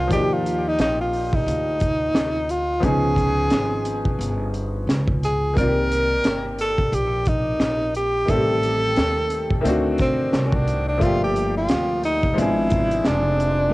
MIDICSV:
0, 0, Header, 1, 5, 480
1, 0, Start_track
1, 0, Tempo, 681818
1, 72, Time_signature, 4, 2, 24, 8
1, 9669, End_track
2, 0, Start_track
2, 0, Title_t, "Tenor saxophone"
2, 0, Program_c, 0, 66
2, 0, Note_on_c, 0, 65, 88
2, 76, Note_off_c, 0, 65, 0
2, 88, Note_on_c, 0, 67, 102
2, 234, Note_on_c, 0, 65, 82
2, 245, Note_off_c, 0, 67, 0
2, 477, Note_on_c, 0, 63, 92
2, 488, Note_off_c, 0, 65, 0
2, 562, Note_off_c, 0, 63, 0
2, 569, Note_on_c, 0, 63, 89
2, 695, Note_off_c, 0, 63, 0
2, 710, Note_on_c, 0, 65, 77
2, 948, Note_on_c, 0, 63, 87
2, 958, Note_off_c, 0, 65, 0
2, 1764, Note_on_c, 0, 65, 86
2, 1774, Note_off_c, 0, 63, 0
2, 2000, Note_on_c, 0, 68, 108
2, 2011, Note_off_c, 0, 65, 0
2, 2956, Note_off_c, 0, 68, 0
2, 3693, Note_on_c, 0, 68, 88
2, 3906, Note_off_c, 0, 68, 0
2, 3927, Note_on_c, 0, 70, 112
2, 4611, Note_off_c, 0, 70, 0
2, 4651, Note_on_c, 0, 69, 103
2, 4889, Note_on_c, 0, 67, 91
2, 4899, Note_off_c, 0, 69, 0
2, 5126, Note_on_c, 0, 63, 89
2, 5136, Note_off_c, 0, 67, 0
2, 5599, Note_off_c, 0, 63, 0
2, 5606, Note_on_c, 0, 67, 89
2, 5843, Note_on_c, 0, 69, 114
2, 5853, Note_off_c, 0, 67, 0
2, 6857, Note_off_c, 0, 69, 0
2, 7046, Note_on_c, 0, 60, 78
2, 7369, Note_on_c, 0, 61, 56
2, 7380, Note_off_c, 0, 60, 0
2, 7428, Note_on_c, 0, 62, 87
2, 7438, Note_off_c, 0, 61, 0
2, 7658, Note_off_c, 0, 62, 0
2, 7662, Note_on_c, 0, 62, 90
2, 7760, Note_on_c, 0, 65, 105
2, 7771, Note_off_c, 0, 62, 0
2, 7900, Note_off_c, 0, 65, 0
2, 7910, Note_on_c, 0, 67, 80
2, 8126, Note_off_c, 0, 67, 0
2, 8147, Note_on_c, 0, 65, 88
2, 8454, Note_off_c, 0, 65, 0
2, 8481, Note_on_c, 0, 63, 89
2, 8722, Note_on_c, 0, 64, 92
2, 8733, Note_off_c, 0, 63, 0
2, 9201, Note_on_c, 0, 62, 93
2, 9212, Note_off_c, 0, 64, 0
2, 9669, Note_off_c, 0, 62, 0
2, 9669, End_track
3, 0, Start_track
3, 0, Title_t, "Upright piano"
3, 0, Program_c, 1, 0
3, 0, Note_on_c, 1, 68, 82
3, 53, Note_on_c, 1, 53, 65
3, 64, Note_on_c, 1, 58, 52
3, 81, Note_on_c, 1, 74, 50
3, 94, Note_off_c, 1, 68, 0
3, 94, Note_on_c, 1, 63, 52
3, 106, Note_on_c, 1, 66, 50
3, 144, Note_off_c, 1, 66, 0
3, 153, Note_on_c, 1, 67, 59
3, 1954, Note_off_c, 1, 53, 0
3, 1959, Note_off_c, 1, 58, 0
3, 1968, Note_off_c, 1, 74, 0
3, 1973, Note_on_c, 1, 53, 62
3, 1975, Note_off_c, 1, 63, 0
3, 1985, Note_on_c, 1, 59, 56
3, 1999, Note_on_c, 1, 61, 55
3, 2004, Note_off_c, 1, 67, 0
3, 2010, Note_on_c, 1, 63, 56
3, 2026, Note_on_c, 1, 68, 63
3, 3874, Note_off_c, 1, 53, 0
3, 3880, Note_off_c, 1, 59, 0
3, 3887, Note_off_c, 1, 61, 0
3, 3893, Note_off_c, 1, 63, 0
3, 3895, Note_on_c, 1, 51, 58
3, 3901, Note_off_c, 1, 68, 0
3, 3908, Note_on_c, 1, 58, 55
3, 3922, Note_on_c, 1, 60, 52
3, 3936, Note_on_c, 1, 74, 53
3, 3949, Note_on_c, 1, 65, 53
3, 3985, Note_off_c, 1, 65, 0
3, 3994, Note_on_c, 1, 67, 57
3, 5795, Note_off_c, 1, 51, 0
3, 5802, Note_off_c, 1, 58, 0
3, 5809, Note_off_c, 1, 60, 0
3, 5810, Note_on_c, 1, 51, 56
3, 5816, Note_off_c, 1, 74, 0
3, 5823, Note_on_c, 1, 55, 57
3, 5837, Note_on_c, 1, 57, 56
3, 5845, Note_off_c, 1, 67, 0
3, 5850, Note_on_c, 1, 60, 53
3, 5863, Note_on_c, 1, 67, 60
3, 6755, Note_off_c, 1, 51, 0
3, 6766, Note_on_c, 1, 51, 83
3, 6768, Note_off_c, 1, 55, 0
3, 6769, Note_off_c, 1, 57, 0
3, 6779, Note_on_c, 1, 57, 72
3, 6780, Note_off_c, 1, 60, 0
3, 6789, Note_off_c, 1, 67, 0
3, 6790, Note_on_c, 1, 60, 75
3, 6804, Note_on_c, 1, 62, 72
3, 6819, Note_on_c, 1, 66, 86
3, 7719, Note_off_c, 1, 51, 0
3, 7726, Note_off_c, 1, 57, 0
3, 7728, Note_on_c, 1, 53, 60
3, 7732, Note_off_c, 1, 60, 0
3, 7739, Note_off_c, 1, 62, 0
3, 7740, Note_on_c, 1, 57, 59
3, 7746, Note_off_c, 1, 66, 0
3, 7755, Note_on_c, 1, 58, 54
3, 7767, Note_on_c, 1, 74, 54
3, 7781, Note_on_c, 1, 67, 68
3, 8675, Note_off_c, 1, 53, 0
3, 8685, Note_on_c, 1, 53, 69
3, 8686, Note_off_c, 1, 57, 0
3, 8694, Note_off_c, 1, 58, 0
3, 8697, Note_on_c, 1, 56, 64
3, 8700, Note_off_c, 1, 74, 0
3, 8707, Note_off_c, 1, 67, 0
3, 8709, Note_on_c, 1, 59, 58
3, 8722, Note_on_c, 1, 62, 64
3, 8738, Note_on_c, 1, 68, 75
3, 9639, Note_off_c, 1, 53, 0
3, 9641, Note_on_c, 1, 55, 62
3, 9645, Note_off_c, 1, 56, 0
3, 9651, Note_off_c, 1, 59, 0
3, 9658, Note_off_c, 1, 62, 0
3, 9666, Note_off_c, 1, 68, 0
3, 9669, Note_off_c, 1, 55, 0
3, 9669, End_track
4, 0, Start_track
4, 0, Title_t, "Upright bass"
4, 0, Program_c, 2, 32
4, 76, Note_on_c, 2, 39, 95
4, 530, Note_off_c, 2, 39, 0
4, 552, Note_on_c, 2, 34, 81
4, 1008, Note_off_c, 2, 34, 0
4, 1031, Note_on_c, 2, 38, 93
4, 1487, Note_off_c, 2, 38, 0
4, 1509, Note_on_c, 2, 38, 83
4, 1966, Note_off_c, 2, 38, 0
4, 1990, Note_on_c, 2, 37, 104
4, 2447, Note_off_c, 2, 37, 0
4, 2473, Note_on_c, 2, 32, 80
4, 2928, Note_off_c, 2, 32, 0
4, 2948, Note_on_c, 2, 31, 87
4, 3406, Note_off_c, 2, 31, 0
4, 3429, Note_on_c, 2, 37, 83
4, 3886, Note_off_c, 2, 37, 0
4, 3916, Note_on_c, 2, 36, 104
4, 4393, Note_off_c, 2, 36, 0
4, 4393, Note_on_c, 2, 31, 82
4, 4848, Note_off_c, 2, 31, 0
4, 4873, Note_on_c, 2, 34, 96
4, 5328, Note_off_c, 2, 34, 0
4, 5352, Note_on_c, 2, 34, 93
4, 5808, Note_off_c, 2, 34, 0
4, 5835, Note_on_c, 2, 33, 104
4, 6290, Note_off_c, 2, 33, 0
4, 6319, Note_on_c, 2, 39, 88
4, 6771, Note_off_c, 2, 39, 0
4, 6792, Note_on_c, 2, 38, 90
4, 7248, Note_off_c, 2, 38, 0
4, 7272, Note_on_c, 2, 36, 87
4, 7728, Note_off_c, 2, 36, 0
4, 7751, Note_on_c, 2, 31, 106
4, 8207, Note_off_c, 2, 31, 0
4, 8232, Note_on_c, 2, 38, 85
4, 8688, Note_off_c, 2, 38, 0
4, 8714, Note_on_c, 2, 32, 102
4, 9169, Note_off_c, 2, 32, 0
4, 9195, Note_on_c, 2, 29, 93
4, 9649, Note_off_c, 2, 29, 0
4, 9669, End_track
5, 0, Start_track
5, 0, Title_t, "Drums"
5, 75, Note_on_c, 9, 36, 105
5, 75, Note_on_c, 9, 42, 85
5, 145, Note_off_c, 9, 36, 0
5, 145, Note_off_c, 9, 42, 0
5, 325, Note_on_c, 9, 42, 68
5, 395, Note_off_c, 9, 42, 0
5, 552, Note_on_c, 9, 42, 80
5, 560, Note_on_c, 9, 38, 105
5, 622, Note_off_c, 9, 42, 0
5, 630, Note_off_c, 9, 38, 0
5, 795, Note_on_c, 9, 46, 50
5, 865, Note_off_c, 9, 46, 0
5, 934, Note_on_c, 9, 36, 93
5, 1004, Note_off_c, 9, 36, 0
5, 1040, Note_on_c, 9, 42, 103
5, 1110, Note_off_c, 9, 42, 0
5, 1266, Note_on_c, 9, 42, 62
5, 1276, Note_on_c, 9, 36, 81
5, 1337, Note_off_c, 9, 42, 0
5, 1346, Note_off_c, 9, 36, 0
5, 1512, Note_on_c, 9, 38, 102
5, 1516, Note_on_c, 9, 42, 72
5, 1583, Note_off_c, 9, 38, 0
5, 1586, Note_off_c, 9, 42, 0
5, 1754, Note_on_c, 9, 42, 64
5, 1825, Note_off_c, 9, 42, 0
5, 1992, Note_on_c, 9, 42, 78
5, 1993, Note_on_c, 9, 36, 99
5, 2062, Note_off_c, 9, 42, 0
5, 2063, Note_off_c, 9, 36, 0
5, 2227, Note_on_c, 9, 36, 79
5, 2237, Note_on_c, 9, 42, 61
5, 2298, Note_off_c, 9, 36, 0
5, 2308, Note_off_c, 9, 42, 0
5, 2466, Note_on_c, 9, 42, 77
5, 2475, Note_on_c, 9, 38, 102
5, 2537, Note_off_c, 9, 42, 0
5, 2545, Note_off_c, 9, 38, 0
5, 2712, Note_on_c, 9, 42, 70
5, 2782, Note_off_c, 9, 42, 0
5, 2854, Note_on_c, 9, 36, 90
5, 2925, Note_off_c, 9, 36, 0
5, 2962, Note_on_c, 9, 42, 101
5, 3033, Note_off_c, 9, 42, 0
5, 3195, Note_on_c, 9, 42, 64
5, 3266, Note_off_c, 9, 42, 0
5, 3443, Note_on_c, 9, 38, 87
5, 3447, Note_on_c, 9, 42, 81
5, 3513, Note_off_c, 9, 38, 0
5, 3517, Note_off_c, 9, 42, 0
5, 3574, Note_on_c, 9, 36, 92
5, 3644, Note_off_c, 9, 36, 0
5, 3684, Note_on_c, 9, 42, 72
5, 3754, Note_off_c, 9, 42, 0
5, 3919, Note_on_c, 9, 36, 94
5, 3921, Note_on_c, 9, 42, 81
5, 3989, Note_off_c, 9, 36, 0
5, 3991, Note_off_c, 9, 42, 0
5, 4165, Note_on_c, 9, 42, 68
5, 4235, Note_off_c, 9, 42, 0
5, 4392, Note_on_c, 9, 42, 87
5, 4400, Note_on_c, 9, 38, 102
5, 4462, Note_off_c, 9, 42, 0
5, 4470, Note_off_c, 9, 38, 0
5, 4635, Note_on_c, 9, 42, 69
5, 4706, Note_off_c, 9, 42, 0
5, 4775, Note_on_c, 9, 36, 98
5, 4845, Note_off_c, 9, 36, 0
5, 4877, Note_on_c, 9, 42, 87
5, 4948, Note_off_c, 9, 42, 0
5, 5107, Note_on_c, 9, 42, 65
5, 5117, Note_on_c, 9, 36, 91
5, 5177, Note_off_c, 9, 42, 0
5, 5187, Note_off_c, 9, 36, 0
5, 5349, Note_on_c, 9, 38, 101
5, 5353, Note_on_c, 9, 42, 76
5, 5420, Note_off_c, 9, 38, 0
5, 5423, Note_off_c, 9, 42, 0
5, 5593, Note_on_c, 9, 42, 62
5, 5664, Note_off_c, 9, 42, 0
5, 5831, Note_on_c, 9, 42, 77
5, 5834, Note_on_c, 9, 36, 95
5, 5901, Note_off_c, 9, 42, 0
5, 5904, Note_off_c, 9, 36, 0
5, 6077, Note_on_c, 9, 42, 68
5, 6147, Note_off_c, 9, 42, 0
5, 6310, Note_on_c, 9, 42, 73
5, 6318, Note_on_c, 9, 38, 101
5, 6380, Note_off_c, 9, 42, 0
5, 6388, Note_off_c, 9, 38, 0
5, 6548, Note_on_c, 9, 42, 66
5, 6619, Note_off_c, 9, 42, 0
5, 6692, Note_on_c, 9, 36, 92
5, 6763, Note_off_c, 9, 36, 0
5, 6796, Note_on_c, 9, 42, 97
5, 6867, Note_off_c, 9, 42, 0
5, 7026, Note_on_c, 9, 42, 72
5, 7036, Note_on_c, 9, 36, 91
5, 7096, Note_off_c, 9, 42, 0
5, 7106, Note_off_c, 9, 36, 0
5, 7273, Note_on_c, 9, 38, 101
5, 7277, Note_on_c, 9, 42, 79
5, 7343, Note_off_c, 9, 38, 0
5, 7347, Note_off_c, 9, 42, 0
5, 7409, Note_on_c, 9, 36, 98
5, 7480, Note_off_c, 9, 36, 0
5, 7515, Note_on_c, 9, 42, 70
5, 7585, Note_off_c, 9, 42, 0
5, 7752, Note_on_c, 9, 42, 74
5, 7753, Note_on_c, 9, 36, 95
5, 7823, Note_off_c, 9, 36, 0
5, 7823, Note_off_c, 9, 42, 0
5, 7996, Note_on_c, 9, 42, 63
5, 8066, Note_off_c, 9, 42, 0
5, 8226, Note_on_c, 9, 42, 87
5, 8234, Note_on_c, 9, 38, 107
5, 8296, Note_off_c, 9, 42, 0
5, 8305, Note_off_c, 9, 38, 0
5, 8472, Note_on_c, 9, 42, 72
5, 8542, Note_off_c, 9, 42, 0
5, 8611, Note_on_c, 9, 36, 99
5, 8681, Note_off_c, 9, 36, 0
5, 8715, Note_on_c, 9, 42, 91
5, 8786, Note_off_c, 9, 42, 0
5, 8942, Note_on_c, 9, 42, 69
5, 8953, Note_on_c, 9, 36, 91
5, 9012, Note_off_c, 9, 42, 0
5, 9023, Note_off_c, 9, 36, 0
5, 9089, Note_on_c, 9, 42, 52
5, 9159, Note_off_c, 9, 42, 0
5, 9184, Note_on_c, 9, 38, 104
5, 9188, Note_on_c, 9, 42, 74
5, 9254, Note_off_c, 9, 38, 0
5, 9258, Note_off_c, 9, 42, 0
5, 9431, Note_on_c, 9, 42, 66
5, 9502, Note_off_c, 9, 42, 0
5, 9669, End_track
0, 0, End_of_file